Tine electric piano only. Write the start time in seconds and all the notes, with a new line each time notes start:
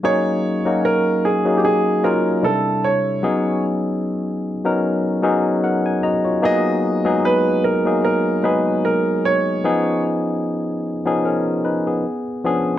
0.03 F#3 A#3 C#4 D#4 G#4
0.65 F#3 A#3 C#4 D#4 F#4
1.45 F#3 A#3 C#4 D#4 G#4
2.04 F#3 A#3 C#4 D#4 F4
2.42 C3 G3 D4 E4 A4
3.23 F#3 B3 C#4 D#4 G#4
4.64 F#3 B3 C#4 D#4 A#4
5.22 F#3 B3 C#4 D#4 G#4
5.64 A#4 F#5
5.86 G#5
6.03 F#4 D#5 A#5
6.25 F4 C#5
6.42 F#3 A#3 B3 D#4 G#4
7.04 F#3 G#3 B3 D#4 G#4
7.85 F#3 A#3 B3 D#4 G#4
8.43 F#3 G#3 B3 D#4 G#4
9.64 F3 B3 C#4 D#4 G#4
11.05 F3 B3 C#4 D#4 G#4
11.25 C#4 A#4
11.65 D#4 B4
11.87 B3 G#4
12.44 F3 B3 C#4 D4 G#4